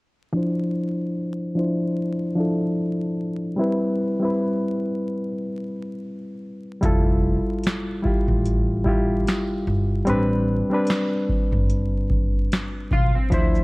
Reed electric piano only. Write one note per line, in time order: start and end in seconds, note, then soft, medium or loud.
0.33 1.14 F3 medium
0.33 1.15 D4 medium
0.33 1.15 E4 medium
0.37 1.16 C5 loud
1.55 2.11 F3 medium
1.55 2.12 D4 medium
1.55 2.12 E4 medium
1.59 2.13 C5 medium
2.35 3.16 F3 medium
2.35 3.17 D4 medium
2.35 3.18 E4 medium
2.40 3.19 A4 medium
3.56 3.98 G3 medium
3.56 3.98 C4 medium
3.56 3.99 E4 loud
3.61 4.00 B4 loud
4.20 5.26 G3 medium
4.20 5.27 C4 medium
4.20 5.28 E4 medium
4.25 5.29 B4 medium
6.81 7.62 G3 loud
6.81 7.63 E4 loud
6.81 7.64 F4 medium
6.86 7.65 A4 loud
8.02 8.59 G3 medium
8.02 8.60 E4 medium
8.02 8.60 F4 medium
8.07 8.61 G4 medium
8.84 9.65 G3 medium
8.84 9.66 E4 medium
8.84 9.67 F4 medium
8.89 9.68 G4 medium
10.05 10.46 G3 loud
10.05 10.47 C4 loud
10.05 10.48 D4 medium
10.10 10.49 B4 loud
10.70 11.76 G3 medium
10.70 11.76 C4 medium
10.70 11.77 D4 medium
10.74 11.78 B4 medium
13.30 13.64 F3 loud
13.30 13.64 D4 medium
13.30 13.64 E4 medium
13.30 13.64 C5 loud